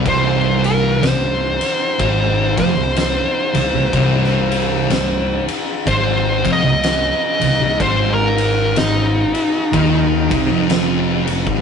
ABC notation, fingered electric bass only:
X:1
M:4/4
L:1/16
Q:"Swing" 1/4=62
K:Ablyd
V:1 name="Fingered electric bass" clef=bass
C,,,4 C,,,2 z2 A,,,2 F,,, C,,,2 z C,,, C,,, | C,,,4 C,,,2 z2 A,,,2 F,,, C,,,2 z C,,, C,,, | A,,,4 A,,,2 z2 E,,2 C,, F,,,4 A,,, |]